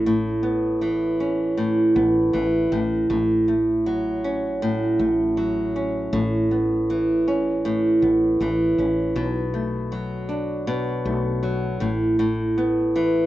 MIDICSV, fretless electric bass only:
0, 0, Header, 1, 2, 480
1, 0, Start_track
1, 0, Key_signature, 3, "major"
1, 0, Tempo, 758534
1, 43, Time_signature, 4, 2, 24, 8
1, 8393, End_track
2, 0, Start_track
2, 0, Title_t, "Fretless electric bass"
2, 0, Program_c, 0, 35
2, 0, Note_on_c, 0, 33, 79
2, 1216, Note_off_c, 0, 33, 0
2, 1240, Note_on_c, 0, 33, 85
2, 1461, Note_off_c, 0, 33, 0
2, 1482, Note_on_c, 0, 33, 75
2, 1702, Note_off_c, 0, 33, 0
2, 1720, Note_on_c, 0, 33, 78
2, 1941, Note_off_c, 0, 33, 0
2, 1960, Note_on_c, 0, 33, 89
2, 3133, Note_off_c, 0, 33, 0
2, 3160, Note_on_c, 0, 33, 76
2, 3853, Note_off_c, 0, 33, 0
2, 3877, Note_on_c, 0, 33, 98
2, 5051, Note_off_c, 0, 33, 0
2, 5078, Note_on_c, 0, 33, 78
2, 5298, Note_off_c, 0, 33, 0
2, 5318, Note_on_c, 0, 33, 82
2, 5539, Note_off_c, 0, 33, 0
2, 5558, Note_on_c, 0, 33, 72
2, 5778, Note_off_c, 0, 33, 0
2, 5796, Note_on_c, 0, 35, 85
2, 6972, Note_off_c, 0, 35, 0
2, 6995, Note_on_c, 0, 35, 74
2, 7452, Note_off_c, 0, 35, 0
2, 7477, Note_on_c, 0, 33, 76
2, 8393, Note_off_c, 0, 33, 0
2, 8393, End_track
0, 0, End_of_file